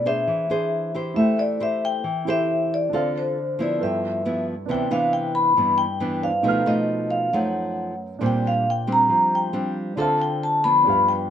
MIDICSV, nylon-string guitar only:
0, 0, Header, 1, 2, 480
1, 0, Start_track
1, 0, Key_signature, 0, "minor"
1, 0, Tempo, 441176
1, 1264, Time_signature, 4, 2, 24, 8
1, 12294, End_track
2, 0, Start_track
2, 0, Title_t, "Nylon-string guitar"
2, 0, Program_c, 0, 24
2, 0, Note_on_c, 0, 47, 66
2, 59, Note_on_c, 0, 62, 52
2, 64, Note_on_c, 0, 68, 55
2, 69, Note_on_c, 0, 72, 61
2, 278, Note_off_c, 0, 47, 0
2, 298, Note_on_c, 0, 52, 65
2, 504, Note_off_c, 0, 62, 0
2, 505, Note_off_c, 0, 68, 0
2, 508, Note_off_c, 0, 72, 0
2, 542, Note_on_c, 0, 62, 59
2, 551, Note_on_c, 0, 68, 60
2, 555, Note_on_c, 0, 72, 64
2, 985, Note_off_c, 0, 62, 0
2, 987, Note_off_c, 0, 68, 0
2, 991, Note_off_c, 0, 72, 0
2, 1028, Note_on_c, 0, 64, 53
2, 1035, Note_on_c, 0, 67, 54
2, 1043, Note_on_c, 0, 72, 65
2, 1237, Note_off_c, 0, 52, 0
2, 1267, Note_on_c, 0, 57, 69
2, 1727, Note_off_c, 0, 64, 0
2, 1730, Note_off_c, 0, 67, 0
2, 1734, Note_off_c, 0, 72, 0
2, 1743, Note_on_c, 0, 64, 59
2, 1751, Note_on_c, 0, 67, 48
2, 1753, Note_on_c, 0, 72, 64
2, 2201, Note_off_c, 0, 57, 0
2, 2219, Note_on_c, 0, 52, 61
2, 2221, Note_off_c, 0, 64, 0
2, 2224, Note_off_c, 0, 72, 0
2, 2225, Note_off_c, 0, 67, 0
2, 2471, Note_on_c, 0, 64, 60
2, 2480, Note_on_c, 0, 67, 65
2, 2484, Note_on_c, 0, 72, 72
2, 3150, Note_off_c, 0, 64, 0
2, 3151, Note_off_c, 0, 67, 0
2, 3155, Note_off_c, 0, 72, 0
2, 3157, Note_off_c, 0, 52, 0
2, 3186, Note_on_c, 0, 50, 65
2, 3190, Note_on_c, 0, 60, 54
2, 3194, Note_on_c, 0, 65, 56
2, 3201, Note_on_c, 0, 69, 56
2, 3664, Note_off_c, 0, 60, 0
2, 3664, Note_off_c, 0, 65, 0
2, 3669, Note_off_c, 0, 69, 0
2, 3904, Note_on_c, 0, 53, 61
2, 3917, Note_on_c, 0, 59, 56
2, 3922, Note_on_c, 0, 64, 68
2, 4121, Note_off_c, 0, 50, 0
2, 4156, Note_on_c, 0, 43, 67
2, 4585, Note_off_c, 0, 53, 0
2, 4592, Note_off_c, 0, 59, 0
2, 4593, Note_off_c, 0, 64, 0
2, 4628, Note_on_c, 0, 53, 58
2, 4633, Note_on_c, 0, 59, 55
2, 4638, Note_on_c, 0, 64, 58
2, 4935, Note_off_c, 0, 53, 0
2, 4937, Note_off_c, 0, 59, 0
2, 4939, Note_off_c, 0, 64, 0
2, 5086, Note_off_c, 0, 43, 0
2, 5097, Note_on_c, 0, 48, 72
2, 5101, Note_on_c, 0, 52, 54
2, 5105, Note_on_c, 0, 59, 52
2, 5111, Note_on_c, 0, 62, 62
2, 5303, Note_off_c, 0, 52, 0
2, 5305, Note_off_c, 0, 59, 0
2, 5309, Note_off_c, 0, 62, 0
2, 5339, Note_on_c, 0, 52, 58
2, 5345, Note_on_c, 0, 59, 64
2, 5350, Note_on_c, 0, 62, 62
2, 6023, Note_off_c, 0, 52, 0
2, 6026, Note_off_c, 0, 59, 0
2, 6028, Note_off_c, 0, 62, 0
2, 6037, Note_off_c, 0, 48, 0
2, 6056, Note_on_c, 0, 52, 50
2, 6061, Note_on_c, 0, 43, 67
2, 6066, Note_on_c, 0, 59, 53
2, 6074, Note_on_c, 0, 62, 50
2, 6369, Note_off_c, 0, 52, 0
2, 6373, Note_off_c, 0, 59, 0
2, 6378, Note_off_c, 0, 62, 0
2, 6531, Note_on_c, 0, 52, 59
2, 6535, Note_on_c, 0, 59, 58
2, 6542, Note_on_c, 0, 62, 59
2, 6860, Note_off_c, 0, 52, 0
2, 6863, Note_off_c, 0, 59, 0
2, 6864, Note_off_c, 0, 62, 0
2, 6997, Note_on_c, 0, 47, 66
2, 6999, Note_off_c, 0, 43, 0
2, 7005, Note_on_c, 0, 53, 57
2, 7008, Note_on_c, 0, 57, 52
2, 7014, Note_on_c, 0, 63, 56
2, 7214, Note_off_c, 0, 53, 0
2, 7217, Note_off_c, 0, 57, 0
2, 7220, Note_off_c, 0, 63, 0
2, 7245, Note_on_c, 0, 53, 62
2, 7252, Note_on_c, 0, 57, 61
2, 7262, Note_on_c, 0, 63, 64
2, 7936, Note_off_c, 0, 53, 0
2, 7939, Note_off_c, 0, 57, 0
2, 7944, Note_off_c, 0, 63, 0
2, 7947, Note_off_c, 0, 47, 0
2, 7974, Note_on_c, 0, 42, 64
2, 7979, Note_on_c, 0, 53, 51
2, 7987, Note_on_c, 0, 57, 52
2, 7987, Note_on_c, 0, 63, 61
2, 8626, Note_off_c, 0, 53, 0
2, 8630, Note_off_c, 0, 63, 0
2, 8631, Note_off_c, 0, 57, 0
2, 8915, Note_off_c, 0, 42, 0
2, 8927, Note_on_c, 0, 46, 72
2, 8931, Note_on_c, 0, 55, 56
2, 8935, Note_on_c, 0, 60, 49
2, 8937, Note_on_c, 0, 62, 56
2, 9415, Note_off_c, 0, 55, 0
2, 9416, Note_off_c, 0, 60, 0
2, 9418, Note_off_c, 0, 62, 0
2, 9654, Note_on_c, 0, 55, 61
2, 9657, Note_on_c, 0, 60, 54
2, 9661, Note_on_c, 0, 62, 58
2, 9873, Note_off_c, 0, 46, 0
2, 9893, Note_on_c, 0, 53, 64
2, 10341, Note_off_c, 0, 55, 0
2, 10342, Note_off_c, 0, 60, 0
2, 10344, Note_off_c, 0, 62, 0
2, 10369, Note_on_c, 0, 55, 55
2, 10375, Note_on_c, 0, 60, 53
2, 10379, Note_on_c, 0, 62, 58
2, 10819, Note_off_c, 0, 55, 0
2, 10820, Note_off_c, 0, 60, 0
2, 10823, Note_off_c, 0, 62, 0
2, 10835, Note_off_c, 0, 53, 0
2, 10845, Note_on_c, 0, 50, 64
2, 10849, Note_on_c, 0, 60, 52
2, 10852, Note_on_c, 0, 65, 54
2, 10860, Note_on_c, 0, 69, 61
2, 11537, Note_off_c, 0, 60, 0
2, 11541, Note_off_c, 0, 65, 0
2, 11542, Note_off_c, 0, 69, 0
2, 11582, Note_on_c, 0, 53, 54
2, 11584, Note_on_c, 0, 59, 56
2, 11589, Note_on_c, 0, 62, 57
2, 11792, Note_off_c, 0, 50, 0
2, 11826, Note_on_c, 0, 43, 63
2, 12265, Note_off_c, 0, 53, 0
2, 12265, Note_off_c, 0, 59, 0
2, 12268, Note_off_c, 0, 62, 0
2, 12294, Note_off_c, 0, 43, 0
2, 12294, End_track
0, 0, End_of_file